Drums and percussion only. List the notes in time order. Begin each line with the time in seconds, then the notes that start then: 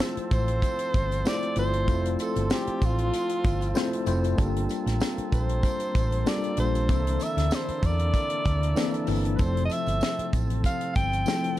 0.00 snare, tambourine
0.17 closed hi-hat
0.31 kick, closed hi-hat, tambourine
0.48 closed hi-hat
0.62 kick, closed hi-hat, tambourine
0.79 closed hi-hat, tambourine
0.94 kick, closed hi-hat, tambourine
1.11 closed hi-hat, tambourine
1.25 snare, tambourine
1.43 closed hi-hat
1.56 closed hi-hat, tambourine
1.73 closed hi-hat
1.88 kick, closed hi-hat, tambourine
2.05 closed hi-hat
2.19 closed hi-hat, tambourine
2.36 closed hi-hat, tambourine
2.50 snare, tambourine
2.67 closed hi-hat
2.82 kick, closed hi-hat, tambourine
2.98 closed hi-hat
3.13 closed hi-hat, tambourine
3.29 closed hi-hat
3.44 kick, closed hi-hat, tambourine
3.61 closed hi-hat, tambourine
3.75 snare, tambourine
3.93 closed hi-hat
4.06 closed hi-hat, tambourine
4.24 closed hi-hat, tambourine
4.38 kick, closed hi-hat, tambourine
4.56 closed hi-hat
4.69 closed hi-hat, tambourine
4.87 snare, closed hi-hat
5.00 snare, tambourine
5.18 closed hi-hat
5.32 kick, closed hi-hat, tambourine
5.49 closed hi-hat
5.63 kick, closed hi-hat, tambourine
5.80 closed hi-hat, tambourine
5.95 kick, closed hi-hat, tambourine
6.12 closed hi-hat
6.26 snare, tambourine
6.44 closed hi-hat
6.57 closed hi-hat, tambourine
6.75 closed hi-hat, tambourine
6.89 kick, closed hi-hat, tambourine
7.07 closed hi-hat
7.20 closed hi-hat, tambourine
7.38 snare, closed hi-hat
7.51 snare, tambourine
7.68 closed hi-hat
7.83 kick, closed hi-hat, tambourine
7.99 closed hi-hat
8.14 kick, closed hi-hat, tambourine
8.30 closed hi-hat
8.45 kick, closed hi-hat, tambourine
8.63 closed hi-hat
8.76 snare, tambourine
8.94 closed hi-hat
9.07 open hi-hat, tambourine
9.25 closed hi-hat
9.39 kick, closed hi-hat, tambourine
9.57 closed hi-hat
9.70 closed hi-hat, tambourine
9.86 closed hi-hat, tambourine
10.01 snare, tambourine
10.19 closed hi-hat
10.33 kick, closed hi-hat, tambourine
10.50 closed hi-hat
10.64 kick, closed hi-hat, tambourine
10.81 closed hi-hat
10.95 kick, closed hi-hat, tambourine
11.12 closed hi-hat, tambourine
11.26 snare, tambourine
11.44 closed hi-hat